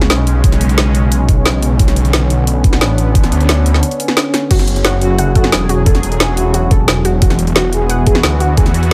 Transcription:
Already playing: C#3 G#3 C#4
0.01 snare
0.10 B1, snare, closed hi-hat
0.27 closed hi-hat
0.44 kick, closed hi-hat
0.52 snare, closed hi-hat
0.61 B1, closed hi-hat
0.69 closed hi-hat
0.78 snare, closed hi-hat
0.95 closed hi-hat
1.12 closed hi-hat
1.29 kick, closed hi-hat
1.46 snare, closed hi-hat
1.62 closed hi-hat
1.79 B1 D3 B3, kick, closed hi-hat
1.88 snare, closed hi-hat
1.96 closed hi-hat
2.05 closed hi-hat
2.13 snare, closed hi-hat
2.30 B1, closed hi-hat
2.47 closed hi-hat
2.64 kick, closed hi-hat
2.73 snare
2.81 A1, snare, closed hi-hat
2.98 closed hi-hat
3.15 kick, closed hi-hat
3.24 snare, closed hi-hat
3.32 D2, closed hi-hat
3.40 closed hi-hat
3.49 snare, closed hi-hat
3.66 D2, closed hi-hat
3.74 snare
3.83 closed hi-hat
3.91 closed hi-hat
4.00 closed hi-hat
4.08 snare
4.17 snare, closed hi-hat
4.34 snare, closed hi-hat
4.51 F#1 F#3 F#4 G#4, kick, closed hi-hat, crash
4.59 snare, closed hi-hat
4.68 closed hi-hat
4.76 closed hi-hat
4.85 F#4, snare, closed hi-hat
5.01 F#1 A3 E4 F#4, closed hi-hat
5.18 F#5, closed hi-hat
5.35 A3 E4 F#4 A4, kick, closed hi-hat
5.44 snare
5.52 E1, snare, closed hi-hat
5.69 F#4, closed hi-hat
5.86 A4, kick, closed hi-hat
5.95 snare, closed hi-hat
6.03 E1, closed hi-hat
6.12 closed hi-hat
6.20 G#4, snare, closed hi-hat
6.37 A3 E4 F#4, closed hi-hat
6.54 F#4, closed hi-hat
6.71 A4, kick, closed hi-hat
6.88 snare, closed hi-hat
7.05 F#4, closed hi-hat
7.22 E1 E3 B3 F#4, kick, closed hi-hat
7.30 snare, closed hi-hat
7.39 closed hi-hat
7.47 closed hi-hat
7.56 F#4, snare, closed hi-hat
7.73 E1 B3 E4 G#4, closed hi-hat
7.90 F#5, closed hi-hat
8.07 B3 E4 G#4, kick, closed hi-hat
8.15 snare
8.23 D2, snare, closed hi-hat
8.40 F#4, closed hi-hat
8.57 G#4, kick, closed hi-hat
8.66 snare, closed hi-hat
8.74 E2, closed hi-hat
8.83 closed hi-hat

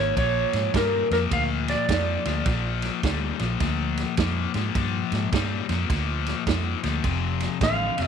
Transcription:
Already playing: G#1 D#3 A#3 C#5
0.17 A#1 A#2 F3 C#5, kick, ride
0.53 G#2, snare, ride
0.74 G2 A#2 G3 A#4, kick, snare, ride
1.11 F2 A#2 F3 A#4, snare, ride
1.31 D2 A#2 F3 F5, kick, ride
1.68 D5, snare, ride
1.89 F2 A#2 F3, kick, snare, ride
2.25 D2 A#2 F3, snare, ride
2.46 A#1 A#2 F3, kick, snare, ride
2.82 snare, ride
3.03 D2 A#2 G3, kick, snare, ride
3.39 A#1 A#2 F3, snare, ride
3.60 D2 A#2 F3, kick, snare, ride
3.97 snare, ride
4.17 F2 A#2 F3, kick, snare, ride
4.54 G#2 A#2 F3, snare, ride
4.75 G2 A#2 F3, kick, ride
5.12 G#2, snare, ride
5.32 G2 A#2 G3, kick, snare, ride
5.69 F2 A#2 F3, snare, ride
5.90 D2 A#2 F3, kick, snare, ride
6.26 snare, ride
6.47 F2 A#2 F3, kick, snare, ride
6.83 D2 A#2 F3, snare, ride
7.04 F1 F2 C3, kick, ride
7.40 snare, ride
7.61 A1 F2 D3 F5, kick, snare, ride
7.97 F1 F2 C3, snare, ride

